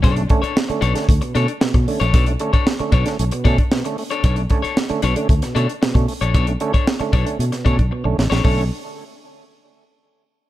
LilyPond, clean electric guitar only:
\new Staff \with { instrumentName = "Clean electric guitar" } { \time 4/4 \key b \minor \tempo 4 = 114 <d' a' cis''>8 r16 <d' a' cis''>16 r8 <d' a' cis''>16 r8. <d' a' cis''>16 r4 <d' a' cis''>16 | <d' a' cis''>16 r8 <d' a' cis''>16 r8 <d' a' cis''>16 r8. <d' a' cis''>16 r4 <d' a' cis''>16 | <d' a' cis''>16 r8 <d' a' cis''>16 r8 <d' a' cis''>16 r8. <d' a' cis''>16 r4 <d' a' cis''>16 | <d' a' cis''>16 r8 <d' a' cis''>16 r8 <d' a' cis''>16 r8. <d' a' cis''>16 r4 <d' a' cis''>16 |
<d' a' cis''>16 r2. r8. | }